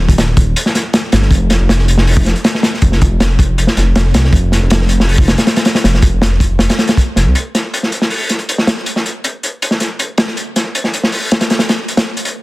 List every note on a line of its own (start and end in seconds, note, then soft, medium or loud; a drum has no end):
0.09 0.54 D#1 loud
0.09 kick loud
0.09 closed hi-hat medium
0.18 snare loud
0.18 closed hi-hat medium
0.37 kick loud
0.37 closed hi-hat medium
0.56 closed hi-hat loud
0.66 snare soft
0.75 snare soft
0.75 closed hi-hat medium
0.93 snare loud
0.93 closed hi-hat medium
1.12 1.30 G1 medium
1.12 snare loud
1.12 closed hi-hat medium
1.22 snare soft
1.31 1.58 F1 loud
1.31 kick loud
1.31 closed hi-hat medium
1.50 snare medium
1.50 closed hi-hat medium
1.60 2.34 F1 loud
1.69 snare loud
1.69 closed hi-hat medium
1.79 snare soft
1.88 closed hi-hat medium
1.98 snare medium
2.07 open hi-hat medium
2.17 kick loud
2.26 snare soft
2.26 closed hi-hat medium
2.36 closed hi-hat soft
2.44 snare loud
2.44 closed hi-hat medium
2.54 snare medium
2.63 snare loud
2.63 closed hi-hat medium
2.74 snare soft
2.82 3.09 F1 loud
2.82 kick loud
2.82 closed hi-hat medium
2.92 snare soft
3.01 kick medium
3.01 closed hi-hat medium
3.11 3.56 F1 loud
3.20 snare loud
3.20 closed hi-hat medium
3.39 kick loud
3.39 closed hi-hat medium
3.58 3.67 F1 medium
3.58 closed hi-hat medium
3.67 snare soft
3.77 4.13 F1 loud
3.77 snare soft
3.77 closed hi-hat medium
3.96 snare loud
3.96 closed hi-hat medium
4.14 4.32 C2 medium
4.14 snare loud
4.14 closed hi-hat loud
4.24 snare soft
4.33 4.60 F1 loud
4.33 kick loud
4.33 closed hi-hat medium
4.52 snare soft
4.52 closed hi-hat medium
4.62 5.36 F1 loud
4.70 snare loud
4.70 closed hi-hat medium
4.81 snare soft
4.89 closed hi-hat medium
5.00 snare medium
5.09 open hi-hat medium
5.18 kick loud
5.28 snare loud
5.28 closed hi-hat medium
5.38 snare loud
5.38 closed hi-hat medium
5.47 snare loud
5.47 closed hi-hat medium
5.56 snare loud
5.56 closed hi-hat medium
5.65 snare loud
5.65 closed hi-hat medium
5.75 snare medium
5.75 closed hi-hat medium
5.84 6.11 F1 loud
5.84 snare loud
5.84 closed hi-hat medium
5.94 snare medium
6.02 kick loud
6.02 closed hi-hat medium
6.13 6.58 F1 loud
6.22 snare loud
6.22 closed hi-hat medium
6.40 kick medium
6.40 closed hi-hat medium
6.59 6.69 F1 medium
6.59 snare loud
6.59 closed hi-hat medium
6.70 snare loud
6.70 closed hi-hat medium
6.79 snare loud
6.79 closed hi-hat medium
6.87 snare loud
6.87 closed hi-hat medium
6.97 kick loud
6.97 closed hi-hat medium
7.16 7.28 F1 loud
7.16 snare soft
7.16 closed hi-hat medium
7.26 7.34 C2 loud
7.35 closed hi-hat medium
7.55 snare soft
7.55 closed hi-hat medium
7.74 closed hi-hat medium
7.83 snare soft
7.92 closed hi-hat medium
8.02 snare soft
8.10 open hi-hat medium
8.29 snare soft
8.29 closed hi-hat medium
8.39 closed hi-hat soft
8.49 closed hi-hat medium
8.58 snare medium
8.67 snare loud
8.67 closed hi-hat medium
8.77 snare soft
8.86 closed hi-hat medium
8.96 snare soft
9.06 closed hi-hat medium
9.24 closed hi-hat medium
9.43 closed hi-hat medium
9.62 closed hi-hat medium
9.71 snare soft
9.80 snare soft
9.80 closed hi-hat medium
9.99 closed hi-hat medium
10.18 snare loud
10.18 closed hi-hat medium
10.28 snare soft
10.37 closed hi-hat medium
10.56 snare soft
10.56 closed hi-hat medium
10.75 closed hi-hat medium
10.84 snare soft
10.94 closed hi-hat medium
11.03 snare soft
11.12 open hi-hat medium
11.31 snare medium
11.31 closed hi-hat medium
11.41 snare medium
11.41 closed hi-hat medium
11.50 snare medium
11.50 closed hi-hat medium
11.59 snare loud
11.59 closed hi-hat medium
11.69 snare loud
11.69 closed hi-hat medium
11.88 closed hi-hat medium
11.97 snare loud
11.97 closed hi-hat medium
12.17 closed hi-hat medium
12.25 closed hi-hat medium